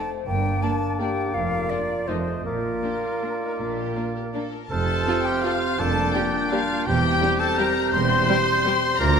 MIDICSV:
0, 0, Header, 1, 12, 480
1, 0, Start_track
1, 0, Tempo, 353982
1, 372, Time_signature, 3, 2, 24, 8
1, 2301, Tempo, 381194
1, 4221, Tempo, 370599
1, 7101, Tempo, 354400
1, 12184, End_track
2, 0, Start_track
2, 0, Title_t, "Flute"
2, 0, Program_c, 0, 73
2, 365, Note_on_c, 0, 79, 81
2, 850, Note_on_c, 0, 81, 71
2, 871, Note_off_c, 0, 79, 0
2, 1342, Note_off_c, 0, 81, 0
2, 1350, Note_on_c, 0, 79, 73
2, 1818, Note_on_c, 0, 77, 67
2, 1838, Note_off_c, 0, 79, 0
2, 2300, Note_on_c, 0, 74, 67
2, 2319, Note_off_c, 0, 77, 0
2, 2778, Note_on_c, 0, 72, 59
2, 2796, Note_off_c, 0, 74, 0
2, 3237, Note_off_c, 0, 72, 0
2, 3245, Note_on_c, 0, 70, 66
2, 5621, Note_off_c, 0, 70, 0
2, 6141, Note_on_c, 0, 89, 68
2, 7567, Note_on_c, 0, 91, 63
2, 7587, Note_off_c, 0, 89, 0
2, 9023, Note_off_c, 0, 91, 0
2, 9031, Note_on_c, 0, 91, 68
2, 11858, Note_off_c, 0, 91, 0
2, 11913, Note_on_c, 0, 94, 72
2, 12184, Note_off_c, 0, 94, 0
2, 12184, End_track
3, 0, Start_track
3, 0, Title_t, "Oboe"
3, 0, Program_c, 1, 68
3, 367, Note_on_c, 1, 74, 60
3, 2779, Note_on_c, 1, 75, 46
3, 2798, Note_off_c, 1, 74, 0
3, 3248, Note_off_c, 1, 75, 0
3, 3261, Note_on_c, 1, 74, 52
3, 5869, Note_off_c, 1, 74, 0
3, 6147, Note_on_c, 1, 72, 64
3, 7576, Note_on_c, 1, 74, 71
3, 7597, Note_off_c, 1, 72, 0
3, 9028, Note_off_c, 1, 74, 0
3, 9036, Note_on_c, 1, 72, 75
3, 11861, Note_off_c, 1, 72, 0
3, 11915, Note_on_c, 1, 74, 79
3, 12184, Note_off_c, 1, 74, 0
3, 12184, End_track
4, 0, Start_track
4, 0, Title_t, "Violin section"
4, 0, Program_c, 2, 48
4, 844, Note_on_c, 2, 74, 46
4, 952, Note_off_c, 2, 74, 0
4, 1361, Note_on_c, 2, 74, 42
4, 1470, Note_off_c, 2, 74, 0
4, 2301, Note_on_c, 2, 65, 43
4, 2402, Note_off_c, 2, 65, 0
4, 2782, Note_on_c, 2, 65, 38
4, 2883, Note_off_c, 2, 65, 0
4, 3727, Note_on_c, 2, 67, 56
4, 3959, Note_off_c, 2, 67, 0
4, 3973, Note_on_c, 2, 65, 49
4, 4212, Note_on_c, 2, 62, 52
4, 4220, Note_off_c, 2, 65, 0
4, 4460, Note_off_c, 2, 62, 0
4, 4472, Note_on_c, 2, 63, 54
4, 4695, Note_off_c, 2, 63, 0
4, 4696, Note_on_c, 2, 62, 57
4, 4929, Note_off_c, 2, 62, 0
4, 4930, Note_on_c, 2, 67, 62
4, 5174, Note_on_c, 2, 65, 50
4, 5175, Note_off_c, 2, 67, 0
4, 5425, Note_off_c, 2, 65, 0
4, 5429, Note_on_c, 2, 67, 53
4, 5527, Note_off_c, 2, 67, 0
4, 5677, Note_on_c, 2, 69, 60
4, 5912, Note_on_c, 2, 70, 58
4, 5913, Note_off_c, 2, 69, 0
4, 6134, Note_on_c, 2, 81, 85
4, 6145, Note_off_c, 2, 70, 0
4, 6803, Note_off_c, 2, 81, 0
4, 6841, Note_on_c, 2, 79, 75
4, 7087, Note_on_c, 2, 77, 84
4, 7091, Note_off_c, 2, 79, 0
4, 7563, Note_on_c, 2, 81, 90
4, 7568, Note_off_c, 2, 77, 0
4, 8049, Note_on_c, 2, 79, 75
4, 8050, Note_off_c, 2, 81, 0
4, 8554, Note_on_c, 2, 77, 85
4, 8558, Note_off_c, 2, 79, 0
4, 9027, Note_off_c, 2, 77, 0
4, 9029, Note_on_c, 2, 79, 93
4, 9737, Note_off_c, 2, 79, 0
4, 9743, Note_on_c, 2, 81, 90
4, 9989, Note_on_c, 2, 82, 92
4, 9990, Note_off_c, 2, 81, 0
4, 10462, Note_on_c, 2, 84, 104
4, 10463, Note_off_c, 2, 82, 0
4, 11880, Note_off_c, 2, 84, 0
4, 11909, Note_on_c, 2, 82, 104
4, 12184, Note_off_c, 2, 82, 0
4, 12184, End_track
5, 0, Start_track
5, 0, Title_t, "Trumpet"
5, 0, Program_c, 3, 56
5, 6149, Note_on_c, 3, 69, 80
5, 6857, Note_on_c, 3, 67, 71
5, 6876, Note_off_c, 3, 69, 0
5, 7097, Note_on_c, 3, 65, 66
5, 7118, Note_off_c, 3, 67, 0
5, 7572, Note_on_c, 3, 69, 80
5, 7592, Note_off_c, 3, 65, 0
5, 8053, Note_on_c, 3, 67, 61
5, 8073, Note_off_c, 3, 69, 0
5, 8546, Note_off_c, 3, 67, 0
5, 8554, Note_on_c, 3, 65, 72
5, 9026, Note_on_c, 3, 67, 90
5, 9047, Note_off_c, 3, 65, 0
5, 9749, Note_on_c, 3, 69, 77
5, 9769, Note_off_c, 3, 67, 0
5, 10001, Note_on_c, 3, 70, 72
5, 10021, Note_off_c, 3, 69, 0
5, 10460, Note_off_c, 3, 70, 0
5, 10468, Note_on_c, 3, 72, 96
5, 11883, Note_off_c, 3, 72, 0
5, 11911, Note_on_c, 3, 70, 96
5, 12184, Note_off_c, 3, 70, 0
5, 12184, End_track
6, 0, Start_track
6, 0, Title_t, "Clarinet"
6, 0, Program_c, 4, 71
6, 372, Note_on_c, 4, 62, 59
6, 1815, Note_on_c, 4, 65, 55
6, 1836, Note_off_c, 4, 62, 0
6, 3244, Note_off_c, 4, 65, 0
6, 3252, Note_on_c, 4, 65, 52
6, 5865, Note_off_c, 4, 65, 0
6, 6147, Note_on_c, 4, 65, 64
6, 7567, Note_on_c, 4, 62, 71
6, 7588, Note_off_c, 4, 65, 0
6, 9023, Note_off_c, 4, 62, 0
6, 9031, Note_on_c, 4, 67, 80
6, 11920, Note_on_c, 4, 65, 80
6, 11941, Note_off_c, 4, 67, 0
6, 12184, Note_off_c, 4, 65, 0
6, 12184, End_track
7, 0, Start_track
7, 0, Title_t, "Violin section"
7, 0, Program_c, 5, 48
7, 853, Note_on_c, 5, 62, 42
7, 961, Note_off_c, 5, 62, 0
7, 1365, Note_on_c, 5, 62, 42
7, 1474, Note_off_c, 5, 62, 0
7, 2310, Note_on_c, 5, 62, 43
7, 2411, Note_off_c, 5, 62, 0
7, 2790, Note_on_c, 5, 63, 38
7, 2891, Note_off_c, 5, 63, 0
7, 3728, Note_on_c, 5, 62, 40
7, 3829, Note_off_c, 5, 62, 0
7, 4221, Note_on_c, 5, 62, 39
7, 4325, Note_off_c, 5, 62, 0
7, 5176, Note_on_c, 5, 62, 37
7, 5279, Note_off_c, 5, 62, 0
7, 5670, Note_on_c, 5, 62, 43
7, 5773, Note_off_c, 5, 62, 0
7, 6619, Note_on_c, 5, 69, 54
7, 6623, Note_on_c, 5, 65, 50
7, 6723, Note_off_c, 5, 69, 0
7, 6726, Note_off_c, 5, 65, 0
7, 7096, Note_on_c, 5, 65, 54
7, 7101, Note_on_c, 5, 69, 49
7, 7204, Note_off_c, 5, 65, 0
7, 7209, Note_off_c, 5, 69, 0
7, 8049, Note_on_c, 5, 62, 55
7, 8053, Note_on_c, 5, 67, 55
7, 8157, Note_off_c, 5, 62, 0
7, 8161, Note_off_c, 5, 67, 0
7, 8551, Note_on_c, 5, 67, 49
7, 8553, Note_on_c, 5, 62, 50
7, 8659, Note_off_c, 5, 67, 0
7, 8662, Note_off_c, 5, 62, 0
7, 9506, Note_on_c, 5, 67, 56
7, 9509, Note_on_c, 5, 60, 56
7, 9615, Note_off_c, 5, 67, 0
7, 9617, Note_off_c, 5, 60, 0
7, 10001, Note_on_c, 5, 60, 54
7, 10002, Note_on_c, 5, 67, 59
7, 10109, Note_off_c, 5, 60, 0
7, 10110, Note_off_c, 5, 67, 0
7, 10950, Note_on_c, 5, 60, 52
7, 10956, Note_on_c, 5, 67, 59
7, 11059, Note_off_c, 5, 60, 0
7, 11064, Note_off_c, 5, 67, 0
7, 11454, Note_on_c, 5, 60, 57
7, 11457, Note_on_c, 5, 67, 60
7, 11562, Note_off_c, 5, 60, 0
7, 11565, Note_off_c, 5, 67, 0
7, 12184, End_track
8, 0, Start_track
8, 0, Title_t, "French horn section"
8, 0, Program_c, 6, 60
8, 0, Note_on_c, 6, 72, 65
8, 360, Note_off_c, 6, 72, 0
8, 370, Note_on_c, 6, 70, 65
8, 1346, Note_on_c, 6, 67, 54
8, 1351, Note_off_c, 6, 70, 0
8, 1817, Note_off_c, 6, 67, 0
8, 1817, Note_on_c, 6, 70, 58
8, 2762, Note_off_c, 6, 70, 0
8, 2780, Note_on_c, 6, 69, 51
8, 3240, Note_off_c, 6, 69, 0
8, 3252, Note_on_c, 6, 65, 50
8, 5865, Note_off_c, 6, 65, 0
8, 6148, Note_on_c, 6, 53, 59
8, 6151, Note_on_c, 6, 60, 57
8, 7521, Note_off_c, 6, 53, 0
8, 7523, Note_off_c, 6, 60, 0
8, 7563, Note_on_c, 6, 58, 57
8, 7565, Note_on_c, 6, 55, 54
8, 9017, Note_off_c, 6, 55, 0
8, 9025, Note_off_c, 6, 58, 0
8, 9032, Note_on_c, 6, 60, 59
8, 9033, Note_on_c, 6, 55, 70
8, 11859, Note_off_c, 6, 55, 0
8, 11859, Note_off_c, 6, 60, 0
8, 11903, Note_on_c, 6, 53, 70
8, 11906, Note_on_c, 6, 62, 69
8, 12184, Note_off_c, 6, 53, 0
8, 12184, Note_off_c, 6, 62, 0
8, 12184, End_track
9, 0, Start_track
9, 0, Title_t, "Viola section"
9, 0, Program_c, 7, 48
9, 848, Note_on_c, 7, 58, 52
9, 956, Note_off_c, 7, 58, 0
9, 1347, Note_on_c, 7, 58, 51
9, 1455, Note_off_c, 7, 58, 0
9, 2303, Note_on_c, 7, 58, 48
9, 2404, Note_off_c, 7, 58, 0
9, 2768, Note_on_c, 7, 57, 43
9, 2869, Note_off_c, 7, 57, 0
9, 3719, Note_on_c, 7, 58, 45
9, 3819, Note_off_c, 7, 58, 0
9, 4224, Note_on_c, 7, 58, 41
9, 4327, Note_off_c, 7, 58, 0
9, 5177, Note_on_c, 7, 58, 42
9, 5281, Note_off_c, 7, 58, 0
9, 5677, Note_on_c, 7, 58, 44
9, 5781, Note_off_c, 7, 58, 0
9, 6610, Note_on_c, 7, 60, 61
9, 6614, Note_on_c, 7, 53, 60
9, 6714, Note_off_c, 7, 60, 0
9, 6717, Note_off_c, 7, 53, 0
9, 7087, Note_on_c, 7, 53, 51
9, 7091, Note_on_c, 7, 60, 52
9, 7195, Note_off_c, 7, 53, 0
9, 7199, Note_off_c, 7, 60, 0
9, 8048, Note_on_c, 7, 58, 62
9, 8052, Note_on_c, 7, 55, 59
9, 8156, Note_off_c, 7, 58, 0
9, 8160, Note_off_c, 7, 55, 0
9, 8551, Note_on_c, 7, 55, 57
9, 8551, Note_on_c, 7, 58, 57
9, 8659, Note_off_c, 7, 58, 0
9, 8660, Note_off_c, 7, 55, 0
9, 9496, Note_on_c, 7, 55, 60
9, 9498, Note_off_c, 7, 55, 0
9, 9498, Note_on_c, 7, 55, 61
9, 9607, Note_off_c, 7, 55, 0
9, 9990, Note_on_c, 7, 55, 59
9, 9991, Note_off_c, 7, 55, 0
9, 9991, Note_on_c, 7, 55, 63
9, 10100, Note_off_c, 7, 55, 0
9, 10951, Note_on_c, 7, 55, 67
9, 10953, Note_off_c, 7, 55, 0
9, 10953, Note_on_c, 7, 55, 63
9, 11061, Note_off_c, 7, 55, 0
9, 11443, Note_on_c, 7, 55, 62
9, 11445, Note_off_c, 7, 55, 0
9, 11445, Note_on_c, 7, 55, 66
9, 11553, Note_off_c, 7, 55, 0
9, 12184, End_track
10, 0, Start_track
10, 0, Title_t, "Bassoon"
10, 0, Program_c, 8, 70
10, 375, Note_on_c, 8, 58, 50
10, 2734, Note_off_c, 8, 58, 0
10, 2785, Note_on_c, 8, 57, 42
10, 3242, Note_off_c, 8, 57, 0
10, 3253, Note_on_c, 8, 58, 51
10, 5865, Note_off_c, 8, 58, 0
10, 6143, Note_on_c, 8, 48, 65
10, 7579, Note_on_c, 8, 46, 59
10, 7599, Note_off_c, 8, 48, 0
10, 9025, Note_off_c, 8, 46, 0
10, 9033, Note_on_c, 8, 48, 67
10, 11914, Note_on_c, 8, 53, 70
10, 11935, Note_off_c, 8, 48, 0
10, 12184, Note_off_c, 8, 53, 0
10, 12184, End_track
11, 0, Start_track
11, 0, Title_t, "Cello section"
11, 0, Program_c, 10, 48
11, 367, Note_on_c, 10, 43, 62
11, 763, Note_off_c, 10, 43, 0
11, 1811, Note_on_c, 10, 41, 56
11, 2212, Note_off_c, 10, 41, 0
11, 2777, Note_on_c, 10, 41, 51
11, 3171, Note_off_c, 10, 41, 0
11, 3247, Note_on_c, 10, 46, 48
11, 3641, Note_off_c, 10, 46, 0
11, 4695, Note_on_c, 10, 46, 53
11, 5091, Note_off_c, 10, 46, 0
11, 6148, Note_on_c, 10, 41, 62
11, 6535, Note_off_c, 10, 41, 0
11, 7571, Note_on_c, 10, 41, 70
11, 7969, Note_off_c, 10, 41, 0
11, 9027, Note_on_c, 10, 40, 75
11, 9417, Note_off_c, 10, 40, 0
11, 10472, Note_on_c, 10, 40, 78
11, 10866, Note_off_c, 10, 40, 0
11, 11919, Note_on_c, 10, 38, 85
11, 12184, Note_off_c, 10, 38, 0
11, 12184, End_track
12, 0, Start_track
12, 0, Title_t, "Double bass section"
12, 0, Program_c, 11, 48
12, 377, Note_on_c, 11, 31, 65
12, 768, Note_off_c, 11, 31, 0
12, 1824, Note_on_c, 11, 29, 57
12, 2219, Note_off_c, 11, 29, 0
12, 2785, Note_on_c, 11, 29, 52
12, 3175, Note_off_c, 11, 29, 0
12, 3247, Note_on_c, 11, 34, 48
12, 3641, Note_off_c, 11, 34, 0
12, 4693, Note_on_c, 11, 34, 52
12, 5090, Note_off_c, 11, 34, 0
12, 6145, Note_on_c, 11, 29, 71
12, 6534, Note_off_c, 11, 29, 0
12, 7576, Note_on_c, 11, 29, 69
12, 7972, Note_off_c, 11, 29, 0
12, 9038, Note_on_c, 11, 28, 70
12, 9423, Note_off_c, 11, 28, 0
12, 10474, Note_on_c, 11, 28, 77
12, 10867, Note_off_c, 11, 28, 0
12, 11917, Note_on_c, 11, 38, 86
12, 12184, Note_off_c, 11, 38, 0
12, 12184, End_track
0, 0, End_of_file